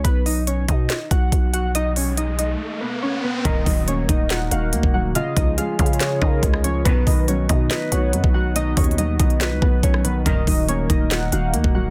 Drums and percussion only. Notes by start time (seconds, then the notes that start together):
0.05 kick, closed hi-hat
0.26 open hi-hat
0.47 closed hi-hat
0.68 kick, closed hi-hat
0.90 snare, clap, closed hi-hat
1.11 kick, closed hi-hat
1.32 kick, closed hi-hat
1.54 closed hi-hat
1.75 closed hi-hat
1.96 open hi-hat
2.17 closed hi-hat
2.39 closed hi-hat
3.45 kick, closed hi-hat
3.66 kick, open hi-hat
3.88 closed hi-hat
4.09 kick, closed hi-hat
4.30 snare, clap, closed hi-hat
4.51 closed hi-hat
4.73 closed hi-hat
4.83 kick
5.15 closed hi-hat
5.37 kick, closed hi-hat
5.58 closed hi-hat
5.79 kick, closed hi-hat
5.86 closed hi-hat
5.93 closed hi-hat
6.00 snare, clap, closed hi-hat
6.22 kick
6.43 kick, closed hi-hat
6.54 cross-stick
6.64 closed hi-hat
6.85 kick, closed hi-hat
7.07 kick, open hi-hat
7.28 closed hi-hat
7.49 kick, closed hi-hat
7.71 snare, clap, closed hi-hat
7.92 closed hi-hat
8.13 closed hi-hat
8.24 kick
8.56 closed hi-hat
8.77 kick, closed hi-hat, open hi-hat
8.84 closed hi-hat
8.91 closed hi-hat
8.98 closed hi-hat
9.20 kick, closed hi-hat
9.30 closed hi-hat
9.41 snare, clap, closed hi-hat
9.62 kick
9.83 kick, closed hi-hat
9.94 cross-stick
10.05 closed hi-hat
10.26 kick, closed hi-hat
10.47 kick, open hi-hat
10.69 closed hi-hat
10.90 kick, closed hi-hat
11.11 snare, clap, closed hi-hat
11.32 closed hi-hat
11.54 closed hi-hat
11.64 kick